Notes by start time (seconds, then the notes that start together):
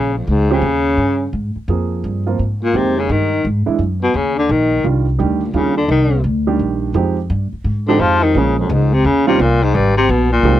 Already playing: A#1 C#3 C#4
0.15 F2 F3
0.27 C#2 G#2 G#3
0.50 C#3 F3 C4 C#4 G4
0.61 D#2
0.97 G2
1.33 G#2
1.56 muted upright bass stroke
1.68 F2 F3 A#3 C4 G#4
2.04 G2
2.26 F3 A#3 C4 F4
2.39 G#2
2.62 A#2 A#3
2.74 F2 C3 D#3 G#3 A#3 C4 G4
2.97 C#3 C#4
3.09 G2 D#3 D#4
3.45 G#2
3.66 E3 G#3 D4 E4, muted upright bass stroke
3.79 F#2
4.02 B2 B3
4.14 D#2 C#3 C#4
4.37 D3 D4
4.49 A#1 D#3 D#4
4.84 C2 D#3 G3 D4 F4
5.19 D2 D#3 G3 D4 G4
5.42 A#2 A#3
5.54 D#2 C#3 D#3 G3 C#4 D4 F4
5.76 D3 D4
5.88 C2 D#3 D#4
6.24 D2
6.47 D#3 G3 D4 G4
6.59 A#1
6.94 F2 F3 G#3 C4 D#4 G4
7.30 G2
7.53 muted upright bass stroke
7.64 G#2
7.88 D3 F3 G#3 C4 D4 D#4 G4
8.00 F2 F3 F4
8.22 D#3 D#4
8.35 A#1 C#3 F3 G#3 A#3 C#4 G#4
8.58 F2 F3
8.69 C#2 G#2 G#3
8.93 C3 C4
9.04 D#2 C#3 C#4
9.27 C3 D#3 G3 C4 C#4 F4
9.39 C2 A#2 A#3
9.62 G#2 G#3
9.75 G#1 G2 G3
9.97 C3 C4
10.09 A#1 B2 B3
10.32 A#2 A#3
10.43 C2 D#3 G#3 A#3 C4 G4